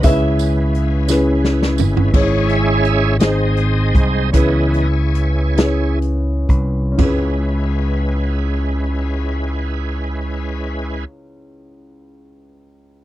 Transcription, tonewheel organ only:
<<
  \new Staff \with { instrumentName = "Tonewheel organ" } { \time 6/8 \key cis \minor \tempo 4. = 46 <gis cis' dis' e' b'>2. | <e' gis' cis''>8 <gis' cis'' e''>4 <gis' bis' dis''>4. | <e' gis' cis''>2 r4 | <gis cis' e' b'>2.~ |
<gis cis' e' b'>2. | }
  \new Staff \with { instrumentName = "Tonewheel organ" } { \time 6/8 \key cis \minor r2. | <gis cis'>4. <gis bis dis'>4. | <e b dis''>8 r2 r8 | r2. |
r2. | }
>>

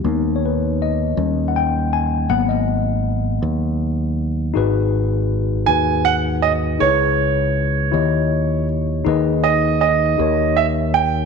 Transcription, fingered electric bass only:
\new Staff \with { instrumentName = "Fingered electric bass" } { \clef bass \time 6/8 \key gis \minor \tempo 4. = 53 dis,4. dis,4. | gis,,4. dis,4. | gis,,4. dis,4. | cis,4. dis,4. |
dis,4. dis,4. | }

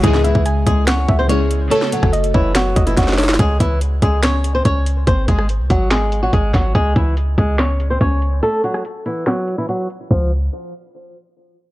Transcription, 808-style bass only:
\new Staff \with { instrumentName = "808-style bass" } { \clef bass \time 4/4 \key cis \minor \tempo 4 = 143 cis,8. cis,8. cis,4 cis,4. | r8. fis,,8. fis,,4 fis,,8 fis,,4 | cis,8 cis,4 cis,4. cis,4 | gis,,8 gis,,8. bis,,16 gis,,4. gis,,8 gis,,8 |
cis,8 cis,4 cis,4. cis,4 | r1 | cis,4 r2. | }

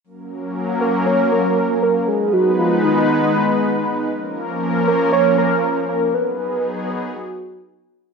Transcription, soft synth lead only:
\new Staff \with { instrumentName = "Soft synth lead" } { \time 4/4 \key fis \major \tempo 4 = 118 r4. ais'8 cis''8 ais'4 ais'8 | gis'8 fis'8 eis'8 dis'2 r8 | r4. ais'8 cis''8 ais'4 ais'8 | b'4. b'8 fis'4. r8 | }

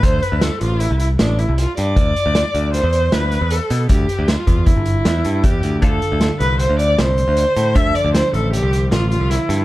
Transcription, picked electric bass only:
\new Staff \with { instrumentName = "Picked electric bass" } { \clef bass \time 5/4 \key d \dorian \tempo 4 = 155 d,8 r16 d,8 r16 a,,8. c,8. a,,8. c,8 r16 g,8 | d,8 r16 d,8 r16 d,8. e,8. d,8. e,8 r16 b,8 | d,8 r16 d,8 r16 e,8. g,,8. e,8 g,8 e,8 d,8 | d,8 r16 d,8 r16 c,8. d,8. c,8. d,8 r16 a,8 |
d,8 r16 d,8 r16 a,,8. c,8. a,,8. c,8 r16 g,8 | }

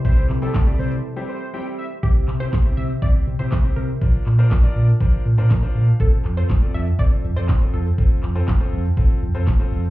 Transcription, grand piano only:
\new Staff \with { instrumentName = "Grand piano" } { \time 4/4 \key f \major \tempo 4 = 121 << { r1 | r1 | r2. bes''8 f''8 | r1 |
r1 | } \\ { <g c' e' g' c''>8 r16 <g c' e' g' c''>16 r16 <g c' e' g' d''>8 r8 <g c' e' g' c''>8 r16 <g c' e' g' c''>8 r8 | <c' e' g' c''>8 r16 <c' e' g' c''>16 r16 <c' e' g' c''>8 r16 <c' e' g' c''>8 r16 <c' e' g' c''>16 r16 <c' e' g' c''>8 r16 | <d' f' bes' c''>8 r16 <d' f' bes' c''>16 r16 <d' f' bes' d''>8 r16 <d' f' bes' c''>8 r16 <d' f' bes' c''>16 r16 <d' f' bes' c''>8 r16 | <c' f' a' c''>8 r16 <c' f' a' c''>16 r16 <c' f' a' d''>8 r16 <c' f' a' c''>8 r16 <c' f' a' d''>16 r16 <c' f' a' c''>8 r16 |
<c' f' a' c''>8 r16 <c' f' a' c''>16 r16 <c' f' a' c''>8 r16 <c' f' a' c''>8 r16 <c' f' a' c''>16 r16 <c' f' a' c''>8 r16 | } >> }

